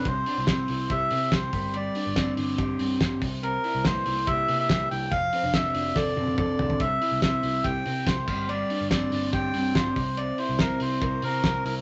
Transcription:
<<
  \new Staff \with { instrumentName = "Melodica" } { \time 4/4 \key c \major \tempo 4 = 142 c''4 c''4 e''4 c''4 | d''4. r2 r8 | bes'4 c''4 e''8. e''8. g''8 | f''4 e''4 d''4 d''4 |
e''4 e''4 g''4 c''4 | d''4 d''4 g''4 c''4 | d''8 c''8 bes'8 c''4 bes'4 bes'8 | }
  \new Staff \with { instrumentName = "Clean electric guitar" } { \time 4/4 \key c \major c8 d'16 e'16 c'8 e'8 g'8 c'8 g'8 g8 | g8 d'8 c'8 d'8 g'8 c'8 g'8 c8 | c8 e'8 bes8 e'8 g'8 bes8 g'8 e'8 | f8 c'16 d'16 c'8 d'8 a'8 c'8 a'8 d'8 |
c8 e'8 c'8 e'8 g'8 c'8 g'8 g8 | g8 d'8 c'8 d'8 g'8 c'8 f'16 g'16 c8 | c8 e'8 c'8 e'8 bes'8 c'8 bes'8 e'8 | }
  \new Staff \with { instrumentName = "Picked electric bass" } { \clef bass \time 4/4 \key c \major c,8 r16 c,16 c,8 c,8 c,8 c8 c,8 g,,8~ | g,,8 r16 g,,16 g,,8 g,,8 g,,8 g,8 g,,8 c,8~ | c,8 r16 c,16 r8 c,8 c,8 c8 c,8 c,8 | f,,8 r16 f,,16 f,,8 f,,8 f,,8 f,8 f,,8 f,,8 |
c,8 r16 c,16 c,8 c,8 c,8 c8 c,8 g,,8~ | g,,8 r16 g,,16 g,,8 g,,8 g,,8 g,8 g,,8 c,8~ | c,8 r16 c,16 c,8 c,8 c,8 c8 c,8 c,8 | }
  \new DrumStaff \with { instrumentName = "Drums" } \drummode { \time 4/4 <hhp bd cymr>8 hho8 <hhp bd cymr sn>8 hho8 <hhp bd cymr>8 hho8 <hhp bd cymr sn>8 <hho bd>8 | <hhp cymr>8 hho8 <hhp bd cymr sn>8 hho8 <hhp bd cymr>8 hho8 <hhp bd cymr sn>8 <hho bd>8 | <hhp cymr>8 hho8 <hhp bd cymr sn>8 hho8 <hhp bd cymr>8 hho8 <hhp bd cymr sn>8 hho8 | <hhp bd cymr>8 hho8 <hhp bd cymr sn>8 hho8 <bd sn>8 tommh16 tommh16 <bd toml>8 tomfh16 tomfh16 |
<hhp bd cymr>8 hho8 <hhp bd cymr sn>8 hho8 <hhp bd cymr>8 hho8 <hhp bd cymr sn>8 <cymc bd>8 | <hhp cymr>8 hho8 <hhp bd cymr sn>8 hho8 <hhp bd cymr>8 hho8 <hhp bd cymr sn>8 <hho bd>8 | <hhp cymr>8 hho8 <hhp bd cymr sn>8 hho8 <hhp bd cymr>8 hho8 <hhp bd cymr sn>8 hho8 | }
>>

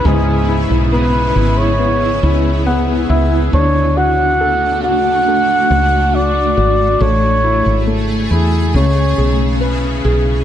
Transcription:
<<
  \new Staff \with { instrumentName = "Flugelhorn" } { \time 4/4 \key cis \phrygian \tempo 4 = 69 gis'8. r16 b'8. cis''4. r8. | cis''8 fis''4 fis''4. d''4 | cis''4~ cis''16 r16 gis'8 cis''4 r4 | }
  \new Staff \with { instrumentName = "Felt piano" } { \time 4/4 \key cis \phrygian <gis, b e'>8 e'8 b8 e'8 b8 e'8 <b fis''>8 <e' e''>8 | d'8 fis'8 a'8 fis'8 a8 fis'4 fis'8 | a8 e'8 a8 e'8 cis8 gis'8 b'8 gis'8 | }
  \new Staff \with { instrumentName = "Ambient pad" } { \time 4/4 \key cis \phrygian << { gis'1 | a1 | gis'1 | } \\ { <cis b e'>1 | <d' fis'>1 | a2 <cis b e'>2 | } >> }
  \new Staff \with { instrumentName = "Fretless electric bass" } { \clef bass \time 4/4 \key cis \phrygian cis,8. b,,8. gis,,4 cis,4 cis,8 | d,2~ d,8 cis,4 gis,,8 | a,,8. gis,,8. e,8 cis,8 b,,4 b,,8 | }
>>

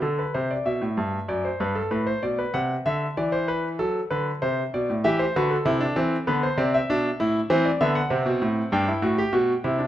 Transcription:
<<
  \new Staff \with { instrumentName = "Grand piano" } { \time 4/4 \key d \dorian \tempo 4 = 97 << { a'16 b'16 c''16 d''16 e''4 d''16 c''16 b'16 a'16 b'16 c''16 d''16 b'16 | fis''8 e''8 d''16 c''16 b'8 a'8 b'8 c''8 d''8 | e''16 c''16 b'16 a'4~ a'16 b'16 c''16 d''16 e''4~ e''16 | c''16 d''16 e''16 fis''4~ fis''16 g''2 | } \\ { r1 | r1 | g'8 fis'8 e'16 d'16 c'8 b8 c'8 d'8 e'8 | c'8 b8 c'4 d'16 e'16 fis'16 g'16 fis'8 e'16 d'16 | } >> }
  \new Staff \with { instrumentName = "Grand piano" } { \clef bass \time 4/4 \key d \dorian d8 c8 b,16 a,16 g,8 fis,8 g,8 a,8 b,8 | c8 d8 e4 fis8 d8 c8 b,16 a,16 | e8 d8 c8 e8 d8 c8 b,8 a,8 | e8 d8 c16 b,16 a,8 g,8 a,8 b,8 c8 | }
>>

